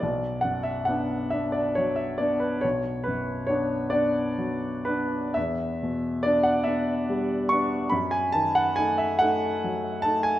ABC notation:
X:1
M:12/8
L:1/16
Q:3/8=47
K:Bm
V:1 name="Grand piano"
d2 f e f2 e d c e d B c2 B2 c2 d4 B2 | e4 d f e4 c'2 b ^g a f g e f4 a g |]
V:2 name="Grand piano"
B,,,2 F,,2 [B,D]2 [B,D]2 F,2 [B,D]2 B,,,2 F,,2 [B,D]2 [B,D]2 F,2 [B,D]2 | E,,2 B,,2 [B,D]2 [B,D]2 G,2 [B,D]2 F,,2 ^D,2 [A,^D]2 [A,D]2 F,2 [A,D]2 |]